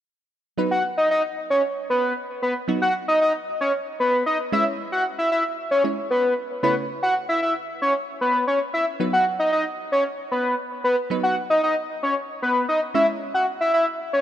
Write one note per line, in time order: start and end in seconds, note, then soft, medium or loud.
0.58 2.64 F#3 medium
0.58 2.64 B3 medium
0.58 2.65 D#4 medium
0.58 2.65 B4 medium
0.71 0.83 F#5 medium
0.98 1.09 D#5 medium
1.11 1.22 D#5 medium
1.50 1.62 C#5 medium
1.90 2.13 B4 medium
2.42 2.54 B4 medium
2.68 4.49 F#3 medium
2.68 4.49 B3 medium
2.68 4.49 D#4 medium
2.68 4.49 F#4 medium
2.82 2.93 F#5 medium
3.08 3.20 D#5 medium
3.21 3.33 D#5 medium
3.61 3.72 C#5 medium
4.00 4.23 B4 medium
4.26 4.38 D#5 medium
4.52 5.81 G#3 medium
4.52 5.82 C#4 medium
4.52 5.82 E4 medium
4.52 5.82 C#5 medium
4.52 4.64 E5 medium
4.92 5.04 F#5 medium
5.18 5.30 E5 medium
5.32 5.43 E5 medium
5.71 5.83 C#5 medium
5.84 6.63 G#3 soft
5.84 6.62 C#4 soft
5.84 6.62 E4 soft
5.84 6.63 C#5 medium
6.11 6.34 B4 medium
6.63 8.70 C#3 medium
6.63 8.70 A3 medium
6.63 8.70 C#4 medium
6.63 8.70 E4 medium
6.63 6.75 B4 medium
6.63 8.70 C#5 medium
7.03 7.14 F#5 medium
7.29 7.41 E5 medium
7.42 7.54 E5 medium
7.82 7.93 C#5 medium
8.21 8.45 B4 medium
8.47 8.59 C#5 medium
8.74 8.85 E5 medium
9.00 11.06 F#3 medium
9.00 11.07 B3 medium
9.00 11.07 D#4 medium
9.00 11.07 B4 medium
9.13 9.25 F#5 medium
9.39 9.51 D#5 medium
9.52 9.64 D#5 medium
9.92 10.04 C#5 medium
10.31 10.55 B4 medium
10.84 10.96 B4 medium
11.10 12.91 F#3 medium
11.10 12.91 B3 medium
11.10 12.91 D#4 medium
11.10 12.91 B4 medium
11.23 11.35 F#5 medium
11.50 11.62 D#5 medium
11.63 11.75 D#5 medium
12.03 12.15 C#5 medium
12.42 12.66 B4 medium
12.69 12.80 D#5 medium
12.94 14.21 G#3 medium
12.94 14.21 C#4 medium
12.94 14.21 E4 medium
12.94 14.21 C#5 medium
12.94 13.06 E5 medium
13.34 13.46 F#5 medium
13.61 13.72 E5 medium
13.74 13.85 E5 medium
14.13 14.21 C#5 medium